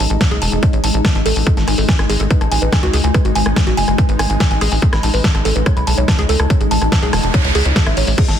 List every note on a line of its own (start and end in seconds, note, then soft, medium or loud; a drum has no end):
0.00 8.17 G#3 medium
0.00 8.17 D#4 medium
0.10 0.17 A1 medium
0.10 0.17 A5 medium
0.10 closed hi-hat soft
0.21 0.31 A5 medium
0.21 kick loud
0.21 snare loud
0.21 closed hi-hat medium
0.31 0.38 B1 medium
0.31 0.38 G#4 loud
0.31 closed hi-hat medium
0.42 0.49 E1 loud
0.42 0.49 A5 loud
0.42 open hi-hat loud
0.52 0.59 E1 medium
0.52 0.62 A5 medium
0.52 closed hi-hat medium
0.63 0.70 C#5 medium
0.63 kick loud
0.63 closed hi-hat medium
0.73 0.80 A1 medium
0.73 0.83 C#5 medium
0.73 closed hi-hat soft
0.84 0.91 A1 medium
0.84 0.88 A5 loud
0.84 open hi-hat loud
0.94 1.01 A1 medium
0.94 1.01 A5 medium
0.94 closed hi-hat soft
1.05 1.14 A5 medium
1.05 kick loud
1.05 snare loud
1.05 closed hi-hat medium
1.15 1.22 A1 medium
1.15 1.19 A5 medium
1.15 closed hi-hat soft
1.26 1.33 A1 loud
1.26 1.33 A4 loud
1.26 open hi-hat loud
1.36 1.43 A1 medium
1.36 1.46 A5 medium
1.36 open hi-hat medium
1.47 1.54 G#4 medium
1.47 kick loud
1.47 closed hi-hat medium
1.57 1.64 G#1 medium
1.57 1.61 A5 medium
1.57 snare soft
1.57 closed hi-hat medium
1.68 1.75 G#1 loud
1.68 1.72 G#5 loud
1.68 cross-stick soft
1.68 open hi-hat loud
1.78 1.85 G#1 medium
1.78 1.88 A4 medium
1.78 open hi-hat medium
1.89 1.98 G#5 medium
1.89 kick loud
1.89 snare loud
1.99 2.06 G#1 medium
1.99 2.09 G#5 medium
1.99 cross-stick medium
1.99 closed hi-hat soft
2.10 2.17 G#1 loud
2.10 2.17 G#4 loud
2.10 open hi-hat loud
2.20 2.27 G#1 medium
2.20 2.24 A4 medium
2.20 closed hi-hat soft
2.31 2.38 B4 medium
2.31 kick loud
2.31 closed hi-hat medium
2.41 2.48 A1 medium
2.41 2.45 A5 medium
2.41 cross-stick soft
2.41 closed hi-hat soft
2.52 2.59 A1 loud
2.52 2.56 G#5 loud
2.52 open hi-hat loud
2.62 2.69 A1 medium
2.62 2.72 B4 medium
2.62 closed hi-hat medium
2.73 2.82 G#5 medium
2.73 kick loud
2.73 cross-stick medium
2.73 snare loud
2.73 closed hi-hat medium
2.83 2.90 C#2 medium
2.83 2.90 F#4 loud
2.83 closed hi-hat medium
2.93 3.01 C#2 loud
2.93 3.01 G#4 loud
2.93 open hi-hat loud
3.04 3.11 C#2 medium
3.04 3.14 G#5 medium
3.04 closed hi-hat medium
3.14 3.22 B4 medium
3.14 kick loud
3.14 cross-stick soft
3.14 closed hi-hat loud
3.25 3.32 G#1 medium
3.25 3.32 F#4 medium
3.25 closed hi-hat medium
3.35 3.43 G#1 loud
3.35 3.40 G#5 loud
3.35 open hi-hat loud
3.46 3.53 G#1 medium
3.46 3.53 G#5 medium
3.46 cross-stick medium
3.46 closed hi-hat medium
3.56 3.66 G#5 medium
3.56 kick loud
3.56 snare loud
3.56 closed hi-hat loud
3.67 3.74 A1 medium
3.67 3.74 F#4 loud
3.67 closed hi-hat medium
3.77 3.85 F#1 loud
3.77 3.85 G#5 loud
3.77 open hi-hat loud
3.88 3.95 F#1 medium
3.88 3.98 G#5 medium
3.88 cross-stick soft
3.88 closed hi-hat medium
3.98 4.06 B4 medium
3.98 kick loud
3.98 closed hi-hat medium
4.09 4.16 G#1 medium
4.09 4.19 B4 medium
4.09 closed hi-hat medium
4.19 4.27 G#1 loud
4.19 4.24 G#5 loud
4.19 cross-stick medium
4.19 open hi-hat loud
4.30 4.37 G#1 medium
4.30 4.37 G#5 medium
4.30 closed hi-hat medium
4.40 4.50 G#5 medium
4.40 kick loud
4.40 snare loud
4.40 closed hi-hat medium
4.51 4.58 A1 medium
4.51 4.55 G#5 medium
4.51 closed hi-hat medium
4.61 4.69 A1 medium
4.61 4.69 G#4 loud
4.61 cross-stick soft
4.61 open hi-hat loud
4.72 4.79 A1 medium
4.72 4.82 G#5 medium
4.72 open hi-hat medium
4.82 4.90 A4 medium
4.82 kick loud
4.82 closed hi-hat medium
4.93 5.00 A1 medium
4.93 4.97 B5 medium
4.93 cross-stick medium
4.93 snare soft
4.93 closed hi-hat medium
5.03 5.11 A1 loud
5.03 5.08 A5 loud
5.03 open hi-hat loud
5.14 5.21 A1 medium
5.14 5.24 B4 medium
5.14 open hi-hat medium
5.24 5.33 A5 medium
5.24 kick loud
5.24 snare loud
5.24 closed hi-hat loud
5.35 5.42 A1 medium
5.35 5.45 A5 medium
5.35 cross-stick soft
5.35 closed hi-hat medium
5.45 5.52 A1 loud
5.45 5.52 A4 loud
5.45 open hi-hat loud
5.56 5.63 A1 medium
5.56 5.60 B4 medium
5.56 closed hi-hat medium
5.66 5.73 C#5 medium
5.66 kick loud
5.66 cross-stick medium
5.66 closed hi-hat medium
5.77 5.84 B1 medium
5.77 5.81 B5 medium
5.77 closed hi-hat medium
5.87 5.94 B1 loud
5.87 5.92 A5 loud
5.87 open hi-hat loud
5.98 6.05 B1 medium
5.98 6.08 C#5 medium
5.98 closed hi-hat medium
6.08 6.18 A5 medium
6.08 kick loud
6.08 cross-stick soft
6.08 snare loud
6.08 closed hi-hat loud
6.19 6.26 C#2 medium
6.19 6.26 G#4 loud
6.19 closed hi-hat soft
6.29 6.36 C#2 loud
6.29 6.36 A4 loud
6.29 open hi-hat loud
6.40 6.47 C#2 medium
6.40 6.50 A5 medium
6.40 cross-stick medium
6.40 closed hi-hat medium
6.50 6.57 C#5 medium
6.50 kick loud
6.50 closed hi-hat loud
6.50 noise sweep medium
6.61 6.68 A1 medium
6.61 6.68 G#4 medium
6.61 closed hi-hat medium
6.71 6.78 A1 loud
6.71 6.75 A5 loud
6.71 open hi-hat loud
6.82 6.89 A1 medium
6.82 6.89 A5 medium
6.82 cross-stick soft
6.82 closed hi-hat medium
6.92 7.02 A5 medium
6.92 kick loud
6.92 snare loud
6.92 closed hi-hat loud
7.03 7.10 B1 medium
7.03 7.10 G#4 loud
7.03 closed hi-hat medium
7.13 7.20 E1 loud
7.13 7.20 A5 loud
7.13 cross-stick medium
7.13 snare soft
7.13 open hi-hat loud
7.24 7.31 E1 medium
7.24 7.34 A5 medium
7.24 closed hi-hat medium
7.34 7.41 C#5 medium
7.34 kick loud
7.34 closed hi-hat medium
7.45 7.52 C#2 medium
7.45 7.54 C#5 medium
7.45 closed hi-hat medium
7.55 7.62 C#2 loud
7.55 7.62 G#4 loud
7.55 cross-stick soft
7.55 open hi-hat loud
7.66 7.73 C#2 medium
7.66 7.75 C#5 medium
7.66 closed hi-hat medium
7.76 7.83 A5 medium
7.76 kick loud
7.76 snare loud
7.76 closed hi-hat loud
7.86 7.94 A1 medium
7.86 7.96 E5 medium
7.86 cross-stick medium
7.86 closed hi-hat medium
7.97 8.04 A1 loud
7.97 8.04 C#5 loud
7.97 open hi-hat loud
8.07 8.15 A1 medium
8.07 8.15 C#5 medium
8.07 open hi-hat medium
8.18 8.25 G#4 medium
8.18 kick loud
8.18 closed hi-hat loud
8.18 crash medium
8.28 8.36 G#1 medium
8.28 8.33 A5 medium
8.28 snare soft
8.28 closed hi-hat medium